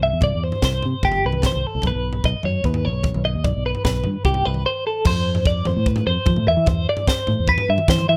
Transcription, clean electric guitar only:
0.03 E5
0.24 D5
0.44 C5
0.65 C5
1.05 G4
1.26 B4
1.46 C5
1.67 A4
1.87 B4
2.25 D#5
2.45 C#5
2.65 B4
2.85 C#5
3.25 D#5
3.44 D5
3.66 B4
3.85 B4
4.25 G4
4.45 B4
4.66 C5
4.87 A4
5.07 C5
5.47 D5
5.67 C5
5.88 B4
6.07 C5
6.48 E5
6.68 C5
6.89 D5
7.09 C5
7.49 B4
7.70 E5
7.90 C5
8.09 E5

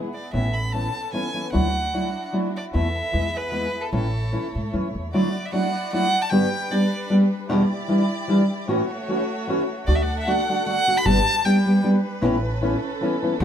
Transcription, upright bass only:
0.33 A1
1.54 D2
2.74 E2
3.13 E2
3.93 A1
4.55 G#2
4.73 F#2
4.95 E2
9.87 D2
11.06 G1
12.22 A1
13.40 D2

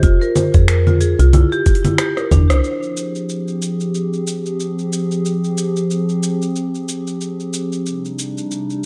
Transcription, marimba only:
0.03 F4
0.21 A#4
0.36 C5
0.54 G#4
0.68 A#4
0.87 F4
1.01 G#4
1.20 F4
1.34 E4
1.52 G4
1.66 G4
1.85 E4
1.99 G4
2.18 A#4
2.32 D4
2.51 C5

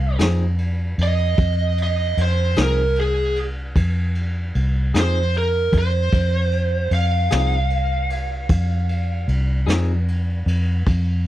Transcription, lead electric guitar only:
Already playing: F5
1.03 D#5
1.83 D#5
2.22 C5
2.62 A#4
3.00 G#4
5.00 C5
5.38 A#4
5.78 C5
6.94 F5

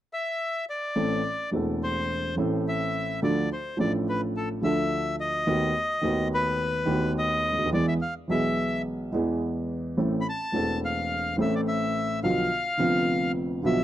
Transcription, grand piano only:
0.96 A1 A2 E3 A3 C4 A4
1.51 E1 E2 E3 A3 C4 A4
2.36 A1 A2 E3 A3 C4 A4
3.22 D2 D3 F3 A3 D4 A4
3.77 A1 A2 F3 A3 D4
3.81 A4
4.62 D2 D3 F3 A3 D4 A4
5.47 D#2 D#3 A3 B3 F#4
6.03 D#2 D#3 A3 B3 F#4
6.85 D#2 D#3 A3 B3
6.89 F#4
7.51 C#2
7.59 D2
7.66 D#2
7.72 E2 E3 G#3 B3 G#4
8.28 B1 B2 E3 G#3 B3 G#4
9.12 E2 E3 G#3 B3 G#4
9.97 A1 A2 E3 A3 C4 A4
10.52 E1 E2 E3 A3 C4 A4
11.37 A1 A2 E3 A3 C4
11.41 A4
12.23 B1 B2 D3 F3 B3 F4
12.77 F1 F2 D3 F3 B3
12.82 F4
13.62 B1 B2 D3 F3 B3 F4

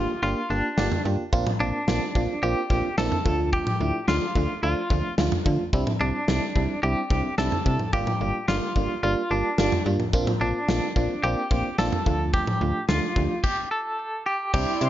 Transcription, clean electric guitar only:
Already playing: F4
0.23 F4
0.50 D4
1.60 D4
2.43 G4
2.98 A4
3.53 G4
4.08 F4
4.63 F4
6.01 D4
6.83 G4
7.38 A4
7.93 G4
8.48 F4
9.03 F4
9.31 D4
10.41 D4
11.24 G4
11.79 A4
12.34 G4
12.89 F4
13.44 G4
13.71 A4
14.26 G4
14.54 G4

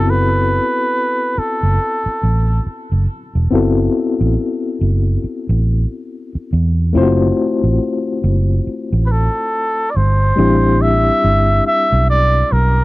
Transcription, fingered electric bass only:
Already playing: F#1
1.38 muted fingered electric bass stroke
1.63 F#1
2.06 muted fingered electric bass stroke
2.23 A1
2.66 muted fingered electric bass stroke
2.92 F#1
3.35 E1
3.52 F#1
4.21 A1
4.81 F#1
5.24 muted fingered electric bass stroke
5.49 A1
6.35 muted fingered electric bass stroke
6.53 E2
6.95 F#1
7.64 A1
8.24 F#1
8.67 muted fingered electric bass stroke
8.93 A1
9.96 G1
10.38 A1
11.24 G1
11.92 B1
12.52 B1

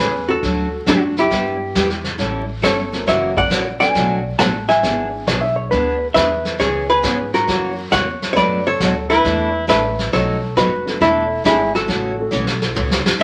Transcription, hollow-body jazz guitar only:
Already playing: G#4 B4
0.29 F#4 A4
0.88 D4 F#4
1.19 E4 G4
2.64 A4 C#5
3.08 C#5 E5
3.37 D5 F#5
3.80 D5 G#5
4.21 F#5
4.39 F#5 A5
4.69 E5 G#5
6.14 B4 E5
6.60 G#4 C#5
6.90 G#4 B4
7.34 F#4 A#4
7.92 C#5 F#5
8.33 B4 C#5 D5
8.67 A4 C#5
9.10 E4 B4
9.69 B4 E5
10.13 A4 C#5
10.57 F#4 B4
11.01 E4 A4
11.46 E4 G#4
11.75 F#4 A4

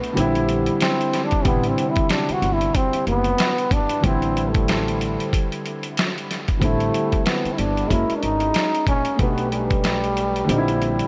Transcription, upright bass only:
0.17 A#1
1.45 A1
2.29 muted upright bass stroke
2.42 G1
2.94 muted upright bass stroke
3.07 F#1
3.71 G1
4.04 A1
6.62 A1
7.45 muted upright bass stroke
7.59 G1
7.91 F#1
8.23 G#1
8.87 A#1
9.19 B1
10.49 A#1

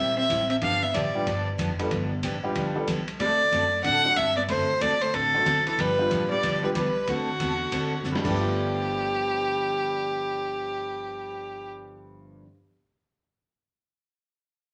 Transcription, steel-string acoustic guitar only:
Already playing: C3 G3 A#3 E4
0.00 G4
0.29 C3 G3 A#3 E4 G4
0.61 D3 F3 B3 D4 G4
0.94 D3 F3 B3 D4 G4
1.26 D3 F3 B3 D4 G4
1.58 D3 F3 B3 D4 G4
1.91 D3 F3 B3 D4 G4
2.23 D3 F3 B3 D4 G4
2.55 D3 F3 B3 D4 G4
2.87 D3 F3 B3 D4 G4
3.19 D3 A3 C4 F#4 A4
3.52 D3 A3 C4 F#4 A4
3.84 D3 A3 C4 F#4 A4
4.16 D3 A3 C4 F#4 A4
4.49 D3 A3 C4 F#4 A4
4.80 D3 A3 C4 F#4 A4
5.13 D3 A3 C4 F#4 A4
5.45 D3 A3 C4 F#4 A4
5.78 D3 F3 B3 D4 G4
6.10 D3 F3 B3 D4 G4
6.43 D3 F3 B3 D4 G4
6.75 D3 F3 B3 D4 G4
7.08 D3 A3 C4 F#4 A4
7.40 D3 A3 C4 F#4 A4
7.72 D3 A3 C4 F#4 A4
8.04 D3 A3 C4 F#4 A4
8.24 G2 D3 F3 B3 D4 G4

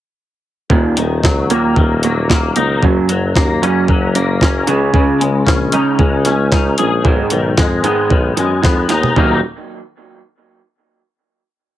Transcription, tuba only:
0.70 D#1
0.97 D#1
1.24 C#2
1.76 D#1
2.56 C#2
2.83 F#1
3.10 F#1
3.36 D#2
3.88 F#1
4.68 C#2
4.94 C#2
5.22 C#2
5.47 A#1
5.99 C#2
6.79 A#1
7.04 B1
7.31 B1
7.57 F2
8.10 B1
8.37 F#2
8.64 F2
8.91 D#2
9.17 D#1

